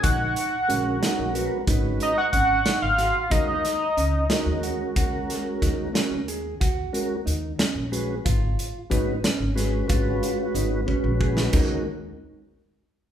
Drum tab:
CC |----------|----------|----------|----------|
HH |x-x-x-x-x-|x-x-x-x-x-|x-x-x-x-x-|x-x-x-x-x-|
SD |------o---|------o-o-|--o---o---|--o-o-o---|
BD |o---------|o---o-----|o---------|o---o-----|

CC |----------|----------|----------|x---------|
HH |x-x-x-x-x-|x-x-x-x-x-|x-x-x-----|----------|
SD |------o---|------o-o-|---------o|----------|
BD |o---------|o---o-----|o-----o-o-|o---------|